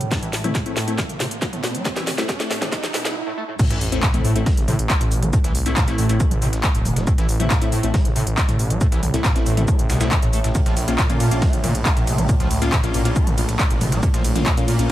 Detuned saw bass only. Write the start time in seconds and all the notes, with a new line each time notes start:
0.01 E1
0.22 A1
0.33 A1
0.44 A1
0.66 A2
0.77 A2
0.88 A1
1.09 A1
1.20 A2
1.31 A1
1.53 A1
1.64 A1
1.75 A1
1.96 C2
2.07 C2
2.18 C2
2.40 A1
2.51 A1
2.62 A1
2.83 A1
2.94 C2
3.05 C2
3.70 A1
3.81 A1
3.92 A1
4.14 A2
4.24 A2
4.35 A1
4.57 A1
4.68 A2
4.79 A1
5.01 A1
5.11 A1
5.22 A1
5.44 C2
5.55 C2
5.66 C2
5.88 A1
5.98 A1
6.09 A1
6.31 A1
6.42 A1
6.53 A1
6.75 E1
6.85 E1
6.96 E1
7.18 A1
7.29 A1
7.40 A1
7.62 A2
7.72 A2
7.83 A1
8.05 A1
8.16 A2
8.27 A1
8.49 A1
8.59 A1
8.70 A1
8.92 C2
9.03 C2
9.14 C2
9.35 A1
9.46 A1
9.57 A1
9.79 A1
9.90 C2
10.01 C2
10.22 A1
10.33 A1
10.44 A1
10.66 A#1
10.77 A#1
10.88 A#1
11.09 A#2
11.20 A#2
11.31 A#1
11.53 A#1
11.64 A#2
11.75 A#1
11.96 A#1
12.07 A#1
12.18 A#1
12.40 C#2
12.51 C#2
12.62 C#2
12.83 A#1
12.94 A#1
13.05 A#1
13.27 A#1
13.38 A#1
13.49 A#1
13.70 G#1
13.81 G#1
13.92 G#1
14.14 A#1
14.25 A#1
14.36 A#1
14.57 A#2
14.68 A#2
14.79 A#1